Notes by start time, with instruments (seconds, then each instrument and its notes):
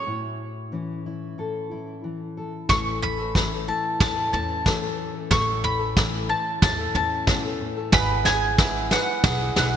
Already playing: steel-string acoustic guitar A3, mandolin C#5
0.07 steel-string acoustic guitar A2 E4
0.72 steel-string acoustic guitar E3 C#4
1.06 steel-string acoustic guitar E4
1.38 steel-string acoustic guitar A2 A4
1.71 steel-string acoustic guitar E4
2.04 steel-string acoustic guitar E3
2.37 steel-string acoustic guitar A4
2.69 upright bass A1, steel-string acoustic guitar A2 E3 A3 C#4 A4, mandolin C#6, kick, snare, floor tom
3.02 mandolin B5, floor tom
3.18 steel-string acoustic guitar A3 C#4 A4
3.35 steel-string acoustic guitar A2 E3 A3 C#4 A4, kick, snare
3.52 steel-string acoustic guitar A3 C#4 A4
3.66 steel-string acoustic guitar E3 A3 C#4 E4 A4, mandolin A5
4.00 upright bass E2, steel-string acoustic guitar A2, mandolin A5, kick, snare, floor tom
4.17 steel-string acoustic guitar A3 C#4 A4
4.32 upright bass E2, steel-string acoustic guitar E3 A3 C#4 A4, mandolin A5, floor tom
4.65 steel-string acoustic guitar A2 E3 A3 C#4 A4, kick, snare
4.82 steel-string acoustic guitar A3 C#4 A4
5.15 steel-string acoustic guitar A3 C#4 A4
5.31 upright bass A1, steel-string acoustic guitar A2 E3 A3 C#4 A4, mandolin C#6, kick, snare, floor tom
5.64 mandolin B5, floor tom
5.79 steel-string acoustic guitar A3 C#4 A4
5.96 steel-string acoustic guitar A2 E3 A3 C#4 A4, kick, snare
6.28 steel-string acoustic guitar E3 A3 C#4 E4 A4, mandolin A5
6.61 upright bass E2, steel-string acoustic guitar A2, mandolin A5, kick, snare, floor tom
6.78 steel-string acoustic guitar A3 C#4 A4
6.94 upright bass E2, steel-string acoustic guitar E3 A3 C#4 A4, mandolin A5, floor tom
7.27 steel-string acoustic guitar A2 B2 E3 A3 C#4 A4, kick, snare
7.44 steel-string acoustic guitar A3 C#4 A4
7.60 steel-string acoustic guitar A2
7.77 steel-string acoustic guitar A3 C#4 A4
7.92 upright bass G#1, steel-string acoustic guitar G#3 B3 E4 G#4, upright piano B4, glockenspiel G#5, mandolin B5, kick, snare, floor tom
8.25 upright piano G#4, mandolin G#5, snare, floor tom, tambourine
8.41 steel-string acoustic guitar B3 E4 G#4, tambourine
8.58 steel-string acoustic guitar G#3 B3 E4 G#4, upright piano E4, kick, snare, tambourine
8.74 tambourine
8.91 steel-string acoustic guitar G#3 B3 E4 G#4, upright piano B4, mandolin F#5, snare
9.24 upright bass B1, upright piano G#4, mandolin F#5, kick, snare, floor tom, tambourine
9.40 steel-string acoustic guitar B3 E4 G#4, tambourine
9.55 upright bass B1, steel-string acoustic guitar G#3 B3 E4 G#4, upright piano E4, mandolin F#5, snare, floor tom, tambourine
9.73 tambourine